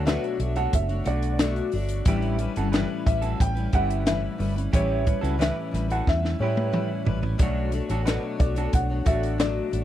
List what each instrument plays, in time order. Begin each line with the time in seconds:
Already playing: fingered electric bass D2, ambient pad A3 B3 D4
0.05 steel-string acoustic guitar B2 F#3 A3 D4 F#4 C#5, clean electric guitar F#4 B4, felt piano E5, snare, closed hi-hat
0.24 closed hi-hat
0.39 fingered electric bass B1, steel-string acoustic guitar A3 D4 F#4 C#5, closed hi-hat
0.55 steel-string acoustic guitar A3 D4 F#4 C#5, clean electric guitar F#4 A4, felt piano F#5, closed hi-hat
0.73 fingered electric bass F#1, felt piano E5, kick, closed hi-hat
0.89 steel-string acoustic guitar A3 D4 F#4 C#5, closed hi-hat
1.04 fingered electric bass B1, steel-string acoustic guitar A3 D4 F#4, clean electric guitar D4 F#4, felt piano D5, closed hi-hat
1.23 closed hi-hat
1.38 steel-string acoustic guitar B2 F#3 A3 D4 F#4, snare, closed hi-hat
1.56 closed hi-hat
1.72 fingered electric bass G1, steel-string acoustic guitar A3 D4 F#4 C#5, open hi-hat
1.89 closed hi-hat
2.05 fingered electric bass A1, steel-string acoustic guitar A2 E3 G3 C#4 E4 B4, ambient pad G3 A3 C#4, clean electric guitar E4 G4, kick, closed hi-hat
2.22 closed hi-hat
2.39 steel-string acoustic guitar G3 C#4 E4 B4, closed hi-hat
2.56 fingered electric bass G1, steel-string acoustic guitar G3 C#4 E4 B4, clean electric guitar F#4 A4, closed hi-hat
2.72 steel-string acoustic guitar A2 E3 G3 C#4 E4 B4, clean electric guitar G4 B4, snare, closed hi-hat
3.06 fingered electric bass A1, steel-string acoustic guitar G3 C#4 E4 B4, felt piano E5, kick, closed hi-hat
3.22 steel-string acoustic guitar G3 C#4 E4 B4, clean electric guitar F#4 A4, closed hi-hat
3.40 fingered electric bass A1, felt piano G5, kick, closed hi-hat
3.55 steel-string acoustic guitar G3 C#4 E4 B4, closed hi-hat
3.73 fingered electric bass G1, steel-string acoustic guitar G3 C#4 E4 B4, clean electric guitar E4 G4, felt piano F#5, kick, closed hi-hat
3.91 closed hi-hat
4.06 steel-string acoustic guitar A2 E3 G3 C#4 E4 B4, felt piano E5, snare, closed hi-hat
4.38 fingered electric bass G1, steel-string acoustic guitar G3 C#4 E4 B4, open hi-hat
4.56 steel-string acoustic guitar G3 C#4 E4 B4, closed hi-hat
4.72 fingered electric bass A1, steel-string acoustic guitar A2 E3 G3 C#4 E4 B4, clean electric guitar E4 G4, felt piano C#5, kick, closed hi-hat
5.04 steel-string acoustic guitar G3 C#4 E4 B4, kick, closed hi-hat
5.21 fingered electric bass C#2, steel-string acoustic guitar G3 C#4 E4 B4, clean electric guitar F#4 A4, closed hi-hat
5.38 steel-string acoustic guitar A2 E3 G3 C#4 E4 B4, clean electric guitar G4 B4, felt piano E5, closed hi-hat
5.42 snare
5.71 fingered electric bass A1, steel-string acoustic guitar G3 C#4 E4 B4, snare, closed hi-hat
5.88 steel-string acoustic guitar G3 C#4 E4 B4, clean electric guitar F#4, felt piano F#5, closed hi-hat
5.92 clean electric guitar A4
6.07 fingered electric bass E2, felt piano E5, kick, snare
6.22 steel-string acoustic guitar G3 C#4 E4 B4, snare
6.39 fingered electric bass A2, steel-string acoustic guitar G3 C#4 E4 B4, clean electric guitar G4, felt piano C#5
6.44 clean electric guitar E4
6.57 high tom
6.72 steel-string acoustic guitar A2 E3 G3 C#4 E4 B4, mid tom
7.05 fingered electric bass A1, steel-string acoustic guitar G3 C#4 E4 B4, floor tom
7.22 steel-string acoustic guitar G3 C#4 E4 B4, floor tom
7.38 fingered electric bass B1, steel-string acoustic guitar B2 F#3 A3 D4 F#4 C#5, ambient pad B3 D4, kick, closed hi-hat
7.43 clean electric guitar D4 F#4
7.72 steel-string acoustic guitar A3 D4 F#4 C#5, closed hi-hat
7.89 fingered electric bass A1, steel-string acoustic guitar A3 D4 F#4 C#5, clean electric guitar F#4 A4, closed hi-hat
8.05 steel-string acoustic guitar B2 F#3 A3 D4 F#4 C#5, clean electric guitar F#4 B4, snare, closed hi-hat
8.38 fingered electric bass B1, steel-string acoustic guitar A3 D4 F#4 C#5, felt piano D5, kick, closed hi-hat
8.55 steel-string acoustic guitar A3 D4 F#4 C#5, clean electric guitar F#4 A4, closed hi-hat
8.73 fingered electric bass B1, felt piano F#5, kick, closed hi-hat
8.89 steel-string acoustic guitar A3 D4 F#4 C#5
9.05 fingered electric bass A1, steel-string acoustic guitar A3 D4 F#4 C#5, clean electric guitar D4 F#4, felt piano E5, kick, closed hi-hat
9.23 closed hi-hat
9.38 steel-string acoustic guitar B2 F#3 A3 D4 F#4, felt piano D5, snare, closed hi-hat
9.71 fingered electric bass A1, steel-string acoustic guitar A3 D4 F#4 C#5, closed hi-hat